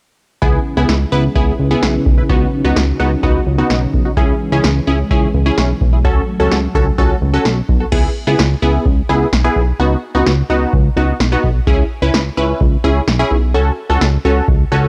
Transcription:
0.42 C#2 C#3 B3 C#4 E4 G#4 B4, kick
0.77 C#2 B3 E4 G#4
0.89 C#2, snare
1.12 C#2 B3 E4 B4
1.35 C#2 B3 E4 G#4, kick
1.59 C#2
1.71 B3 E4 G#4
1.82 B1, snare
2.06 B1, kick
2.18 E4 B4
2.29 C#2 B3 D#4 F#4, kick
2.65 C#2 B3 D#4 F#4
2.76 C#2, snare
3.00 C#2 B3 D#4 F#4
3.23 C#2 B3 D#4 F#4, kick
3.47 C#2
3.58 B3 D#4 F#4
3.70 B1, snare
3.94 B1, kick
4.05 D#4 F#4
4.17 C#2 E3 G#3 C#4 E4 G#4, kick
4.52 C#2 C#4 E4 G#4
4.64 C#2, snare
4.87 C#2 C#4 E4 G#4
5.11 C#2 C#4 E4 G#4, kick
5.34 C#2
5.46 C#4 E4 G#4
5.58 B1, snare
5.81 B1, kick
5.93 E4 G#4
6.04 C#2 F#3 A3 C#4 F#4 A4, kick
6.40 C#2 C#4 F#4 A4
6.51 C#2, snare
6.75 C#2 C#4 F#4 A4, kick
6.98 C#2 C#4 F#4 A4, kick
7.22 C#2
7.33 C#4 F#4 A4
7.45 B1, snare
7.69 B1, kick
7.80 F#4 A4
7.92 C#2 B3 E4 G#4, kick, crash
8.27 C#2 B3 E4 G#4
8.39 C#2, snare
8.62 C#2 B3 E4 G#4
8.86 C#2, kick
9.09 C#2 B3 E4 G#4
9.33 B1, snare
9.44 B3 E4 G#4
9.56 B1
9.80 C#2 B3 D#4 F#4
10.15 C#2 B3 D#4 F#4
10.26 C#2, snare
10.50 C#2 B3 D#4 F#4
10.73 C#2, kick
10.97 C#2 B3 D#4 F#4
11.20 B1, snare
11.32 B3 D#4 F#4
11.44 B1, kick
11.67 C#2 C#4 E4 G#4, kick
12.02 C#2 C#4 E4 B4
12.14 C#2, snare
12.37 C#2 C#4 E4 B4
12.61 C#2, kick
12.84 C#2 C#4 E4 G#4
13.08 B1, snare
13.19 C#4 E4 G#4
13.31 B1
13.54 C#2 C#4 F#4 A4
13.90 C#2 C#4 F#4 A4
14.01 C#2, snare
14.25 C#2 C#4 F#4 A4
14.48 C#2, kick
14.72 C#2 C#4 F#4 A4

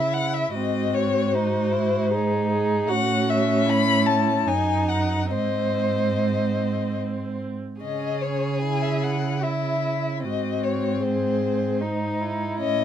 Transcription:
Already playing: C#3 E4 E5
0.13 F#5
0.34 E5
0.53 G#2 F#4 D#5
0.58 C4
0.95 C#5
1.34 D#4 C5
1.73 E4
2.10 D#4 G#4
2.50 G#4
2.89 A2 C#4 F#4 F#5
3.30 E5
3.66 E4 B5
4.06 A5
4.47 F#2 D#4 G#5
4.89 F#5
5.30 G#2 C4 C5 D#5
7.82 C#3 C#4 G#4 D#5
8.22 C#5
8.62 E4 G#5
8.82 E5
9.03 F#5
9.43 E4 E5
10.23 G#2 C4 F#4 D#5
10.64 C#5
11.02 G#4 C5
11.80 D#4
12.21 E4
12.59 A2 C#4 D#5

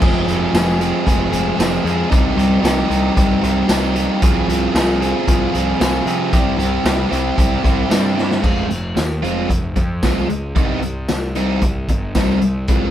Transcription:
0.01 F1 F3 G#3 C4 G#4, kick, crash
0.27 F1 F3 G#3 C4 G#4, closed hi-hat
0.53 F1 F3 G#3 C4 G#4, snare, closed hi-hat, tambourine
0.80 F3 G#3 C4 G#4, closed hi-hat
1.05 F1 F3 G#3 C4 G#4, kick, closed hi-hat
1.31 F1 F3 G#3 C4 G#4, closed hi-hat
1.57 F1 F3 G#3 C4 G#4, snare, closed hi-hat, tambourine
1.84 F2 F3 G#3 C4 G#4, closed hi-hat
2.10 C2 G3 C4 D#4 G4, kick, closed hi-hat
2.36 C2 G3 C4 D#4 G4, closed hi-hat
2.62 C2 G3 C4 D#4 G4, snare, closed hi-hat, tambourine
2.89 C2 G3 C4 D#4 G4, closed hi-hat
3.15 C2 G3 C4 D#4 G4, kick, closed hi-hat
3.41 C2 G3 C4 D#4 G4, closed hi-hat
3.68 C2 G3 C4 D#4 G4, snare, closed hi-hat, tambourine
3.95 G3 C4 D#4 G4, closed hi-hat
4.22 C2 F3 C4 F4 G#4, kick, closed hi-hat
4.48 C2 F3 C4 F4 G#4, closed hi-hat
4.73 C2 F3 C4 F4 G#4, snare, closed hi-hat, tambourine
5.01 F3 C4 F4 G#4, closed hi-hat
5.27 C2 F3 C4 F4 G#4, kick, closed hi-hat
5.52 C2 F3 C4 F4 G#4, closed hi-hat
5.79 C2 F3 C4 F4 G#4, snare, closed hi-hat, tambourine
6.06 C3 F3 C4 F4 G#4, closed hi-hat
6.32 C2 G3 C4 E4 G4, kick, closed hi-hat
6.58 C2 G3 C4 E4 G4, closed hi-hat
6.85 C2 G3 C4 E4 G4, snare, closed hi-hat, tambourine
7.10 C2 G3 C4 E4 G4, closed hi-hat
7.37 C2 G3 C4 E4 G4, kick, closed hi-hat
7.64 C2 G3 C4 E4 G4, kick, closed hi-hat
7.89 G2 G3 C4 E4 G4, snare, closed hi-hat, tambourine
8.14 G3 C4 E4 G4, snare
8.31 snare
8.41 F1 G#3 C4 F4, kick, crash
8.70 F1, muted overdriven electric guitar stroke, closed hi-hat
8.96 D#2, muted overdriven electric guitar stroke, snare, closed hi-hat, tambourine
9.22 F1 G#3 C4 F4, closed hi-hat
9.49 F1, muted overdriven electric guitar stroke, kick, closed hi-hat
9.76 F2, muted overdriven electric guitar stroke, kick, closed hi-hat
10.03 C2 G#3 C4 F4, kick, snare, closed hi-hat, tambourine
10.30 C#2, muted overdriven electric guitar stroke, closed hi-hat
10.55 C2 G3 C4 D#4, kick, closed hi-hat
10.82 muted overdriven electric guitar stroke, closed hi-hat
11.08 C2, muted overdriven electric guitar stroke, snare, closed hi-hat, tambourine
11.35 G3 C4 D#4, closed hi-hat
11.62 C2, muted overdriven electric guitar stroke, kick, closed hi-hat
11.89 G1, muted overdriven electric guitar stroke, kick, closed hi-hat
12.15 C2 G3 C4 D#4, kick, snare, closed hi-hat, tambourine
12.41 C2, muted overdriven electric guitar stroke, closed hi-hat
12.68 C2 G#3 C4 F4, kick, closed hi-hat

